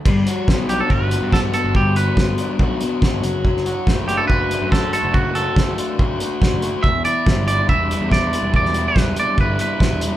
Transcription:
<<
  \new Staff \with { instrumentName = "Clean electric guitar" } { \time 4/4 \key g \major \tempo 4 = 141 r4. g'16 a'16 b'4 a'8 a'8 | g'8 b'4. r2 | r4. g'16 a'16 b'4 a'8 a'8 | fis'8 a'4. r2 |
e''8 d''4 d''8 e''4 d''4 | d''8. b'8. d''8 b'8 b'4 r8 | }
  \new Staff \with { instrumentName = "Overdriven electric guitar" } { \time 4/4 \key g \major g8 fis'8 b8 d'8 fis'8 b8 fis'8 b8 | g8 fis'8 b8 d'8 fis'8 b8 fis'8 fis8 | fis8 fis'8 a8 d'8 fis'8 a8 fis'8 a8 | fis8 fis'8 a8 d'8 fis'8 a8 fis'8 a8 |
e,8 e'8 g8 d'8 e'8 g8 e'8 g8 | e,8 e'8 g8 d'8 e'8 g8 e'8 g8 | }
  \new Staff \with { instrumentName = "Picked electric bass" } { \clef bass \time 4/4 \key g \major g,,8 r8 b,,4 g,,8. g,4 g,,16 | g,,4 g,,8 r8 b,,8 r8. g,,16 fis,,8~ | fis,,4 fis,,4 fis,,8. fis,4 fis,,16 | fis,,4 fis,,8 r8 fis,,8 r8. fis,,8 r16 |
e,,8 r8 g,,4 e,,8. e,4 e,,16 | e,,4 e,,8 r8 g,,8 r8. e,,8 r16 | }
  \new DrumStaff \with { instrumentName = "Drums" } \drummode { \time 4/4 <cymc bd>8 hh8 <bd sn>8 hh8 bd8 hh8 <bd sn>8 hh8 | bd8 hh8 <bd sn>8 hh8 bd8 hh8 <bd sn>8 hh8 | bd16 sn16 hh8 <bd sn>8 hh8 bd8 hh8 <bd sn>8 hh8 | bd8 hh8 <bd sn>8 hh8 bd8 hh8 <bd sn>8 hh8 |
bd8 hh8 <bd sn>8 hh8 bd8 hh8 <bd sn>8 hh8 | bd16 sn16 hh8 <bd sn>8 hh8 bd8 hh8 <bd sn>8 hh8 | }
>>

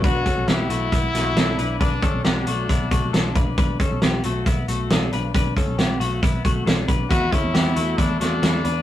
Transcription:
<<
  \new Staff \with { instrumentName = "Clean electric guitar" } { \time 4/4 \key b \minor \tempo 4 = 136 <d' b'>8 <cis' a'>8 <b g'>8 <a fis'>8 <b e'>8 <a fis'>8 <d' a'>8 <d' b'>8 | <d' b'>8 <cis' a'>8 <b g'>8 <a fis'>8 <b e'>8 <a fis'>8 <d' a'>8 <d' b'>8 | <d' b'>8 <cis' a'>8 <b g'>8 <a fis'>8 <b e'>8 <a fis'>8 <d' a'>8 <d' b'>8 | <d' b'>8 <cis' a'>8 <b g'>8 <a fis'>8 <b e'>8 <a fis'>8 <d' a'>8 <d' b'>8 |
<e' b'>8 <cis' a'>8 <b g'>8 <a fis'>8 <a e'>8 <a fis'>8 <e' a'>8 <d' b'>8 | }
  \new Staff \with { instrumentName = "Trumpet" } { \time 4/4 \key b \minor fis'4 e'2. | d'4 d'2~ d'8 r8 | r1 | r1 |
fis'8 e'4. d'8 d'4. | }
  \new Staff \with { instrumentName = "Picked electric bass" } { \clef bass \time 4/4 \key b \minor b,,8 r16 b,,16 b,,8 b,,8 b,,8 b,,8 b,,8 b,,8 | b,,8 r16 b,,16 b,,8 b,,8 b,,8 b,,8 b,,8 b,,8 | b,,8 r16 b,,16 b,,8 b,,8 b,,8 b,,8 b,,8 b,,8 | b,,8 r16 b,,16 b,,8 b,,8 b,,8 b,,8 b,,8 b,,8 |
e,8 r16 e,16 e,8 e,8 e,8 e,8 e,8 e,8 | }
  \new DrumStaff \with { instrumentName = "Drums" } \drummode { \time 4/4 <hh bd>8 <hh bd>8 <hh sn>8 hh8 <hh bd>8 <hh sn>8 <hh sn>8 hh8 | <hh bd>8 <hh bd>8 <hh sn>8 hh8 <hh bd>8 <hh bd>8 <hh sn>8 <hh bd>8 | <hh bd>8 <hh bd>8 <hh sn>8 hh8 <hh bd>8 hh8 <hh sn>8 hh8 | <hh bd>8 <hh bd>8 <hh sn>8 hh8 <hh bd>8 <hh bd>8 <hh sn>8 <hh bd>8 |
<hh bd>8 <hh bd>8 <hh sn>8 hh8 <hh bd>8 <hh sn>8 <hh sn>8 hh8 | }
>>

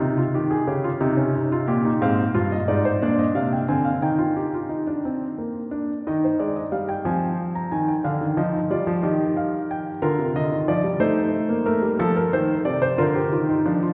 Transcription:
<<
  \new Staff \with { instrumentName = "Grand piano" } { \time 6/8 \key bes \dorian \tempo 4. = 60 << { r2. | \key ees \major f''8. ees''16 d''16 c''16 d''16 ees''16 f''16 g''16 aes''16 f''16 | g''2~ g''8 r8 | ees''16 c''16 d''16 ees''16 f''16 g''16 aes''8. bes''16 aes''16 g''16 |
f''8 ees''8 d''8 ees''8 f''8 g''8 | bes'8 ees''8 d''8 c''4 bes'8 | a'16 bes'16 c''8 d''16 c''16 bes'4. | } \\ { ees'16 f'16 g'16 aes'16 g'16 f'16 ees'16 des'16 ees'16 f'16 g'16 ees'16 | c'8 f'8 ees'8 d'4 c'8 | ees'16 f'16 g'16 f'16 ees'16 d'16 c'8 bes8 d'8 | ees'4. c'4. |
d'8 ees'8 f'8 g'4. | f'4. ees'4.~ | ees'4. f'16 g'16 f'16 ees'16 d'16 f'16 | } >> }
  \new Staff \with { instrumentName = "Grand piano" } { \clef bass \time 6/8 \key bes \dorian c8 ees8 des8 c4 bes,8 | \key ees \major aes,8 g,8 aes,8 bes,8 c8 d8 | ees2~ ees8 r8 | ees8 aes8 g8 f4 ees8 |
d16 ees16 f8 g16 f16 ees4. | d16 c16 d16 ees16 f16 g16 a8. bes16 a16 g16 | f8 ees8 c8 d8 ees8 f8 | }
>>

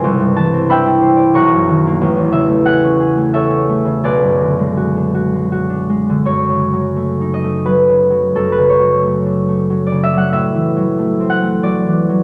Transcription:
<<
  \new Staff \with { instrumentName = "Harp" } { \time 3/4 \key fis \minor \tempo 4 = 89 << { r8 a''8 b''4 cis'''4~ | cis'''8 e''8 fis''4 e''4 | d''2. | cis''4. dis''8 b'4 |
a'16 b'16 cis''4.~ cis''16 d''16 e''16 fis''16 | e''4. fis''8 d''4 | } \\ { r4 <e'' g''>4 <fis'' ais''>4 | r2 <a' cis''>4 | <gis' b'>2. | r2. |
r2. | r2. | } >> }
  \new Staff \with { instrumentName = "Harp" } { \clef bass \time 3/4 \key fis \minor <c, bis>16 g,16 e16 c'16 d'16 e'16 c''16 d''16 b,,16 fis,16 dis16 ais16 | a,,16 e,16 cis16 a16 gis'16 cis'16 gis'16 a16 gis'16 cis'16 a16 cis16 | b,,16 fis,16 d16 gis16 fis'16 d'16 fis'16 gis16 fis'16 d'16 gis16 d16 | \tuplet 3/2 { fis,8 cis8 fis8 a8 dis'8 a8 fis8 cis8 fis8 } |
\tuplet 3/2 { fis,8 cis8 fis8 a8 d'8 a8 fis8 cis8 fis8 } | \tuplet 3/2 { a,8 e8 fis8 a8 c'8 a8 fis8 e8 fis8 } | }
>>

